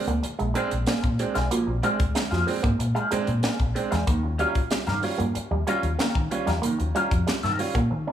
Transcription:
0.07 D2 A#3, muted clean electric guitar stroke, closed hi-hat
0.23 muted clean electric guitar stroke, muted fingered electric bass stroke, closed hi-hat
0.39 A#1 G#3, closed hi-hat
0.54 G#3 C4 D4 G#4 C5 F5, closed hi-hat
0.71 A#1, muted clean electric guitar stroke, closed hi-hat
0.86 A#3 D4 G#4 C5 F5, snare, closed hi-hat
1.03 A#2, muted clean electric guitar stroke, kick, closed hi-hat
1.19 G#3 C4 D4, muted clean electric guitar stroke, closed hi-hat
1.35 B1 G#3 D4 G#4 C5 F5, snare, closed hi-hat
1.51 A#2 F3 A#3, closed hi-hat
1.67 A#1 C4 D4, muted clean electric guitar stroke
1.83 G#3 C4 D4 G#4 C5 F5, closed hi-hat
2.00 D2, kick, closed hi-hat
2.15 G#3 C4 D4, muted clean electric guitar stroke, snare, closed hi-hat
2.31 F2 A#2 F3 D4 G#4 C5 F5, snare, closed hi-hat
2.47 G#3 C4 D4, muted clean electric guitar stroke, open hi-hat
2.63 G#2 A#3, muted clean electric guitar stroke, kick, closed hi-hat
2.79 A#2, muted clean electric guitar stroke, closed hi-hat
2.95 G#3 D4 G#4 C5 F5, closed hi-hat
3.11 G#3 C4 D4, muted clean electric guitar stroke, muted fingered electric bass stroke, closed hi-hat
3.27 A#2, muted clean electric guitar stroke, closed hi-hat
3.43 A#3 D4 G#4 C5 F5, muted fingered electric bass stroke, snare, closed hi-hat
3.59 A#1, muted clean electric guitar stroke, kick, closed hi-hat
3.74 G#3 C4 D4, muted clean electric guitar stroke, closed hi-hat
3.91 E2 G#3 D4 G#4 C5 F5, snare, closed hi-hat
4.07 D#2 D#3 A#3, kick, closed hi-hat
4.23 C#4 F4, muted clean electric guitar stroke
4.38 G3 C#4 F4 G4 A#4 F5, closed hi-hat
4.55 kick, closed hi-hat
4.71 G3 C#4 F4, muted clean electric guitar stroke, snare, closed hi-hat
4.87 G2 D#3 C#4 G4 A#4 F5, snare, closed hi-hat
5.03 G3 C#4 F4, muted clean electric guitar stroke, open hi-hat
5.18 G2 A#3, muted clean electric guitar stroke, closed hi-hat
5.35 muted fingered electric bass stroke, muted clean electric guitar stroke, closed hi-hat
5.51 D#2 G3
5.67 G3 C#4 F4 G4 A#4 F5, closed hi-hat
5.83 D#2, muted clean electric guitar stroke, closed hi-hat
5.99 A#3 C#4 G4 A#4 F5, snare, closed hi-hat
6.15 D#3, muted clean electric guitar stroke, kick
6.30 G3 C#4 F4, muted clean electric guitar stroke, closed hi-hat
6.46 E2 G3 C#4 G4 A#4 F5, snare, closed hi-hat
6.62 D#3 A#3, closed hi-hat
6.79 D#2 C#4 F4, muted clean electric guitar stroke, closed hi-hat
6.95 G3 C#4 F4 G4 A#4 F5, closed hi-hat
7.11 F2, kick, closed hi-hat
7.27 G3 C#4 F4, muted clean electric guitar stroke, snare, closed hi-hat
7.43 G2 D#3 C#4 G4 A#4 F5, snare, closed hi-hat
7.59 G3 C#4 F4, muted clean electric guitar stroke, open hi-hat
7.75 A#2 A#3, muted clean electric guitar stroke, kick, closed hi-hat
7.90 D#3, muted clean electric guitar stroke
8.07 C#3 C#4

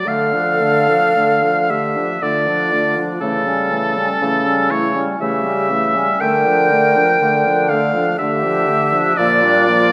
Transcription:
0.05 D3 A3 A4 F5
0.33 F3 D4
0.60 D3 A3
0.88 F3 D4
1.15 D3 A3
1.42 F3 D4
1.70 D3 A3 G4 E5
1.96 F3 D4
2.22 D3 A3 F4 D5
2.47 F3 D4
2.72 D3 A3
2.96 F3 D4
3.21 C#3 E3 A3 C#4 A4
3.46 G3 C#4
3.71 E3 A3
3.96 G3 C#4
4.21 C#3 E3 A3
4.46 G3 C#4
4.70 E3 A3 E4 C#5
4.95 G3 C#4
5.19 C#3 E3 A3 G4 E5
5.44 G3 C#4
5.70 E3 A3
5.95 G3 C#4
6.19 D3 A3 A#4 G5
6.46 F3 D4
6.70 D3 A3
6.95 F3 D4
7.21 D3 A3
7.45 F3 D4
7.69 D3 A3 A4 F5
7.95 F3 D4
8.19 D3 A3 G4 E5
8.43 F3 D4
8.67 D3 A3
8.93 F3 D4
9.17 A#2 F3 A#3 F4 D5
9.43 G3 D4
9.67 F3 A#3

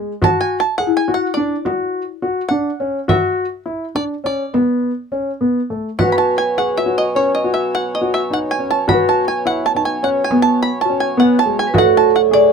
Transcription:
Already playing: G#3
0.22 F#4 A5, frame drum
0.41 G#5
0.60 A5
0.78 G#4 F#5, frame drum
0.87 E4
0.97 G#5
1.08 F#4, frame drum
1.14 F#5
1.34 D4 D5
1.65 F#4, frame drum
2.22 F#4
2.49 D4 F#5
2.80 C#4
3.08 F#4 E5, frame drum
3.66 E4
3.95 D4 D5, frame drum
4.24 C#4 D5, frame drum
4.54 B3, frame drum
4.83 frame drum
5.12 C#4, frame drum
5.41 B3, frame drum
5.70 A3, frame drum
5.99 B2 F#3 C#4 F#4 B4 F#5, frame drum
6.12 B5
6.18 A5
6.38 G#5
6.57 G#4 F#5, frame drum
6.77 F#4 E5
6.86 F#4, frame drum
6.98 D#5
7.15 C#4 C#5
7.35 D#5
7.44 F#4
7.54 E5
7.75 F#5
7.95 D#5
8.01 F#4
8.14 E5
8.30 D#4 F#5
8.51 G#5
8.59 C#4
8.71 A5
8.88 F#4 B5, frame drum
8.93 B4
9.09 A5
9.28 G#5
9.45 E4 F#5, frame drum
9.66 A5
9.75 D#4 A5, frame drum
9.85 G#5
10.03 C#4 F#5
10.24 G#5
10.31 B3, frame drum
10.42 A5
10.62 B5
10.81 A5
10.85 C#4 F#4
11.00 G#5
11.17 B3 F#5
11.39 A5
11.46 G#3
11.59 G#5
11.67 B4
11.73 D2 A2 F#4 A4, frame drum
11.78 F#5
11.97 A5
12.16 F#5
12.31 G#4 D5, frame drum

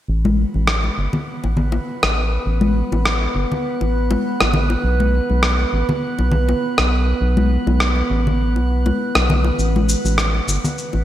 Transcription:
0.08 A1 B3 B4
0.25 high conga
0.54 A1, high conga
0.67 cross-stick
0.84 high conga
0.98 G1
1.13 low conga
1.44 A1, high bongo
1.57 low conga
1.72 high bongo
2.03 A1, cross-stick
2.46 A1
2.61 high conga
2.92 A1, high bongo, high conga
3.05 cross-stick
3.35 G1
3.52 low conga
3.81 A1, high bongo
4.11 high bongo, high conga
4.41 A1, cross-stick, high bongo
4.54 low conga
4.70 high bongo
4.84 B1
5.00 high conga
5.30 B1, high conga
5.43 cross-stick
5.59 high conga
5.73 A1
5.89 low conga
6.19 B1, high bongo
6.32 low conga
6.49 high bongo
6.78 B1, cross-stick
7.21 B1
7.37 high conga
7.67 B1, high bongo, high conga
7.80 cross-stick
7.96 high conga
8.10 A1
8.27 low conga
8.56 B1, high bongo
8.86 high bongo, high conga
9.15 B1, cross-stick, high bongo
9.30 low conga
9.45 high bongo
9.58 A1, shaker
9.76 high conga
9.89 shaker
10.05 A1, high conga, shaker
10.18 cross-stick, shaker
10.34 high conga
10.48 G1, shaker
10.64 low conga, shaker
10.78 shaker
10.93 A1, high bongo

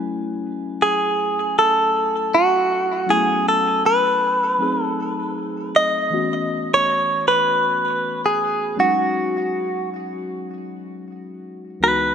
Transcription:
Already playing: F#3 A3 C#4 E4 G#5
0.82 G#4
1.59 A4
2.35 F#4
3.06 F#3 A3 B3 C#4 E4
3.10 G#4
3.49 A4
3.86 B4
4.58 F#3 A3 C4 D#4 G#4
4.84 A4
5.76 D#5
6.10 E3 A3 B3 C#4 F#4
6.74 C#5
7.28 B4
8.26 G#4
8.76 F#3 G#3 C#4 D#4 F#4
11.80 C#2 E3 G#3 B3 D#4 F#4 B4

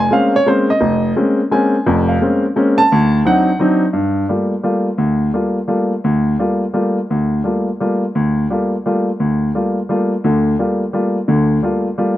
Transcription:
0.00 G#5
0.11 G#3 A#3 C4 C#4 F5
0.36 C#5
0.46 G#3 A#3 C4 C#4 C5
0.70 D#5
0.81 F1
1.16 G#3 A#3 C4 C#4
1.51 G#3 A#3 C4 C#4 G#5
1.86 F1 F2
2.09 F5
2.21 G#3 A#3 C4 C#4
2.56 G#3 A#3 C4 C#4
2.78 A5
2.92 D2
3.25 F#3 C4 D4 D#4 F#5
3.59 F#3 C4 D4 D#4
3.93 G2
4.29 G3 A3 A#3 F4
4.64 G3 A3 A#3 F4
4.98 D2
5.34 G3 A3 A#3 F4
5.68 G3 A3 A#3 F4
6.04 D2
6.40 G3 A3 A#3 F4
6.74 G3 A3 A#3 F4
7.10 D2
7.44 G3 A3 A#3 F4
7.80 G3 A3 A#3 F4
8.15 D2
8.51 G3 A3 A#3 F4
8.86 G3 A3 A#3 F4
9.20 D2
9.55 G3 A3 A#3 F4
9.89 G3 A3 A#3 F4
10.24 D2 D3
10.59 G3 A3 A#3 F4
10.93 G3 A3 A#3 F4
11.28 D2 D3
11.63 G3 A3 A#3 F4
11.98 G3 A3 A#3 F4

